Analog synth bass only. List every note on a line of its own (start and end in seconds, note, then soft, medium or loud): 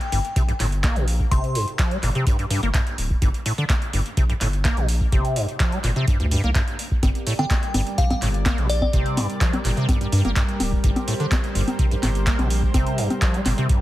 0.12 0.21 G1 loud
0.36 0.53 A#1 medium
0.60 0.90 G1 medium
0.96 1.26 A#1 loud
1.31 1.40 G1 medium
2.03 2.11 G1 loud
2.50 2.59 G2 medium
2.63 2.71 G1 loud
2.98 3.15 D1 loud
3.22 3.30 G1 loud
3.93 4.02 G1 loud
4.17 4.34 A#1 medium
4.41 4.71 G1 medium
4.77 5.07 A#1 loud
5.12 5.21 G1 loud
5.84 5.92 G1 loud
6.20 6.36 D2 medium
6.44 6.52 C2 medium
7.03 7.11 G1 loud
7.74 7.83 G1 loud
7.98 8.15 A#1 medium
8.22 8.52 G1 medium
8.58 8.88 A#1 loud
8.93 9.02 G1 medium
9.65 9.73 G1 loud
10.12 10.21 G2 loud
10.25 10.33 G1 loud
10.60 10.77 D1 loud
10.84 10.92 G1 loud
11.55 11.64 G1 loud
11.79 11.96 A#1 medium
12.03 12.33 G1 medium
12.39 12.69 A#1 loud
12.74 12.83 G1 loud
13.46 13.54 G1 loud